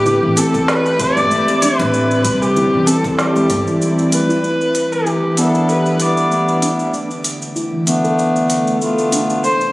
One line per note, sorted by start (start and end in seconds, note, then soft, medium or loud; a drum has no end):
0.00 0.18 A1 medium
0.00 1.93 A3 medium
0.00 4.44 C4 medium
0.00 0.44 D4 medium
0.00 0.39 G4 medium
0.00 2.94 G4 medium
0.00 0.26 D5 medium
0.06 0.21 E4 medium
0.06 low conga medium
0.06 cabasa soft
0.23 0.34 A1 medium
0.23 0.36 E3 medium
0.37 0.53 C4 medium
0.37 0.70 A4 medium
0.37 closed hi-hat medium
0.37 cabasa medium
0.54 0.68 A4 medium
0.54 2.94 E5 medium
0.54 kick medium
0.54 muted conga medium
0.54 cabasa soft
0.68 1.01 B4 loud
0.68 snare medium
0.68 cabasa soft
0.86 cabasa soft
1.00 1.63 D5 loud
1.00 kick loud
1.00 closed hi-hat medium
1.00 cabasa medium
1.17 1.28 G1 medium
1.17 high conga medium
1.17 cabasa soft
1.31 1.61 A3 medium
1.31 cabasa soft
1.48 muted conga medium
1.48 cabasa soft
1.62 1.92 D4 loud
1.62 2.44 B4 medium
1.62 closed hi-hat medium
1.62 muted conga medium
1.62 cabasa medium
1.79 2.26 A2 loud
1.79 muted conga medium
1.79 cabasa soft
1.94 4.44 G3 medium
1.94 2.03 A3 medium
1.94 cabasa soft
2.11 cabasa soft
2.24 2.68 C2 medium
2.24 kick medium
2.24 closed hi-hat medium
2.24 muted conga medium
2.24 high conga soft
2.24 cabasa medium
2.42 2.88 G4 medium
2.42 cabasa soft
2.56 2.71 E4 medium
2.56 5.44 E4 medium
2.56 low conga medium
2.56 cabasa soft
2.73 2.85 C2 medium
2.73 2.86 E3 medium
2.87 3.03 C4 medium
2.87 3.11 A4 medium
2.87 closed hi-hat medium
2.87 cabasa medium
3.04 3.18 A4 medium
3.04 5.44 D5 medium
3.04 kick loud
3.04 muted conga medium
3.04 cabasa soft
3.12 3.20 A4 medium
3.18 3.81 G4 medium
3.18 snare medium
3.18 cabasa soft
3.36 3.47 E2 medium
3.36 high conga medium
3.36 cabasa soft
3.50 3.64 G1 loud
3.50 kick loud
3.50 closed hi-hat medium
3.50 high conga medium
3.50 low conga medium
3.50 cabasa medium
3.67 3.80 E3 medium
3.67 cabasa soft
3.81 3.97 E4 medium
3.81 cabasa soft
3.98 high conga soft
3.98 cabasa soft
4.12 4.28 A3 medium
4.12 4.93 B4 medium
4.12 closed hi-hat loud
4.12 high conga medium
4.12 cabasa medium
4.29 4.43 E4 loud
4.29 cabasa soft
4.43 6.94 E3 medium
4.43 4.53 A3 medium
4.43 cabasa soft
4.61 cabasa soft
4.75 7.94 D4 medium
4.75 closed hi-hat medium
4.75 cabasa medium
4.81 7.94 G4 medium
4.92 5.39 G4 medium
4.92 cabasa soft
5.06 5.21 E4 medium
5.06 cabasa soft
5.23 5.36 E3 medium
5.36 5.96 G3 medium
5.36 5.96 B3 medium
5.36 5.53 B3 medium
5.36 5.96 D4 medium
5.36 5.97 E4 medium
5.36 5.70 A4 medium
5.36 closed hi-hat medium
5.36 cabasa medium
5.54 5.68 A4 medium
5.54 cabasa soft
5.69 6.02 B4 medium
5.69 cabasa soft
5.86 cabasa soft
5.97 6.91 G3 medium
5.97 6.91 B3 medium
5.97 6.92 D4 medium
5.97 6.63 D5 medium
5.97 closed hi-hat medium
5.97 cabasa medium
6.01 6.93 E4 medium
6.17 cabasa soft
6.31 6.61 A3 medium
6.31 cabasa soft
6.49 cabasa soft
6.62 6.92 D4 medium
6.62 closed hi-hat medium
6.62 cabasa medium
6.79 cabasa soft
6.93 9.43 D3 medium
6.93 7.03 A3 medium
6.93 cabasa soft
7.03 9.72 A3 medium
7.11 cabasa soft
7.24 closed hi-hat medium
7.24 cabasa medium
7.42 cabasa soft
7.56 7.71 E4 medium
7.56 cabasa soft
7.73 7.86 E3 medium
7.85 8.76 A3 medium
7.85 8.77 B3 medium
7.85 8.03 B3 medium
7.85 8.78 D4 medium
7.85 closed hi-hat medium
7.85 cabasa medium
8.04 8.18 A4 medium
8.04 9.72 A4 medium
8.04 cabasa soft
8.19 cabasa soft
8.36 cabasa soft
8.50 closed hi-hat medium
8.50 cabasa medium
8.67 cabasa soft
8.79 9.41 A3 medium
8.79 9.11 A3 medium
8.79 9.41 B3 medium
8.79 9.42 D4 medium
8.79 9.42 F4 medium
8.79 cabasa soft
8.99 cabasa soft
9.12 9.42 D4 medium
9.12 closed hi-hat medium
9.12 cabasa medium
9.30 cabasa soft
9.43 9.72 C3 medium
9.43 9.53 A3 medium
9.43 9.72 C5 loud
9.43 cabasa soft
9.61 cabasa soft